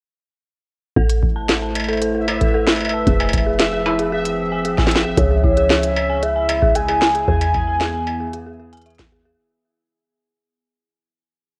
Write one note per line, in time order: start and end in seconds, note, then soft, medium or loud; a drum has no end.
0.96 3.04 A1 medium
0.96 3.07 A3 medium
0.96 1.01 A4 loud
0.96 9.40 E5 medium
0.96 kick loud
1.10 3.07 E4 medium
1.10 closed hi-hat medium
1.23 kick loud
1.31 3.91 C5 medium
1.36 1.43 A5 medium
1.49 1.53 A4 medium
1.49 snare loud
1.49 closed hi-hat medium
1.62 1.73 A5 medium
1.75 closed hi-hat medium
1.75 struck metal medium
1.80 struck metal soft
1.84 struck metal soft
1.88 1.96 A4 medium
1.88 3.91 B4 medium
1.88 struck metal soft
1.93 struck metal soft
1.97 struck metal soft
2.02 2.09 A4 medium
2.02 closed hi-hat medium
2.15 2.22 A4 medium
2.28 2.35 E4 medium
2.28 struck metal medium
2.41 2.48 A4 medium
2.41 kick loud
2.41 closed hi-hat medium
2.54 2.59 A4 loud
2.67 snare loud
2.67 struck metal soft
2.72 struck metal soft
2.76 struck metal soft
2.81 struck metal soft
2.85 struck metal soft
2.89 struck metal soft
2.94 3.01 A5 medium
3.07 5.15 F1 medium
3.07 5.17 F3 medium
3.07 3.11 G#4 medium
3.07 kick loud
3.07 closed hi-hat medium
3.20 3.31 G#5 medium
3.20 struck metal medium
3.29 struck metal soft
3.33 kick loud
3.33 closed hi-hat medium
3.33 struck metal soft
3.38 struck metal soft
3.45 5.18 C4 medium
3.45 3.54 G#4 medium
3.60 3.67 G#4 medium
3.60 snare loud
3.60 closed hi-hat loud
3.73 3.80 G#4 medium
3.73 5.91 G#4 medium
3.86 3.93 E4 medium
3.86 struck metal medium
3.99 4.06 G#4 medium
3.99 closed hi-hat medium
4.12 4.17 G#4 loud
4.25 closed hi-hat medium
4.52 4.59 G#5 medium
4.65 4.69 G#4 medium
4.65 closed hi-hat medium
4.78 4.89 G#5 medium
4.78 kick loud
4.78 snare medium
4.87 snare medium
4.91 closed hi-hat medium
4.96 snare medium
5.04 5.12 G#4 medium
5.17 7.25 C#2 medium
5.17 7.28 C#3 medium
5.17 5.25 G#4 medium
5.17 6.24 C#5 loud
5.17 kick loud
5.17 closed hi-hat loud
5.31 5.38 G#4 medium
5.44 5.51 E4 medium
5.44 kick loud
5.57 5.64 G#4 medium
5.57 closed hi-hat medium
5.70 5.74 G#4 loud
5.70 snare loud
5.83 closed hi-hat loud
5.96 struck metal medium
6.10 7.28 G#3 medium
6.10 9.38 E4 medium
6.10 6.17 G#5 medium
6.23 6.27 G#4 medium
6.23 6.77 E5 loud
6.23 closed hi-hat medium
6.36 6.47 G#5 medium
6.49 closed hi-hat medium
6.49 struck metal medium
6.62 6.69 G#4 medium
6.62 kick loud
6.75 6.83 G#4 medium
6.75 7.27 G#5 loud
6.75 closed hi-hat medium
6.88 6.96 G#4 medium
6.88 struck metal soft
7.02 7.09 E4 medium
7.02 snare loud
7.15 7.22 G#4 medium
7.15 closed hi-hat medium
7.28 9.36 E2 medium
7.28 9.38 E3 medium
7.28 7.32 G#4 loud
7.28 8.82 G#5 loud
7.28 kick loud
7.41 closed hi-hat medium
7.41 struck metal medium
7.49 9.39 B3 medium
7.54 kick loud
7.54 struck metal soft
7.67 7.75 G#5 medium
7.81 7.85 G#4 medium
7.81 snare loud
7.81 closed hi-hat medium
7.94 8.05 G#5 medium
8.07 struck metal medium
8.20 8.27 G#4 medium
8.20 9.38 G#4 medium
8.33 8.40 G#4 medium
8.33 closed hi-hat medium
8.46 8.54 G#4 medium
8.60 8.70 G#4 medium
8.73 8.80 G#5 loud
8.73 closed hi-hat medium
8.77 closed hi-hat soft
8.81 closed hi-hat soft
8.86 8.93 E5 medium
8.86 closed hi-hat soft
8.90 closed hi-hat soft
8.95 closed hi-hat soft
8.99 kick loud
8.99 snare loud
8.99 closed hi-hat medium
9.12 9.17 G#4 medium
9.25 9.30 G#4 loud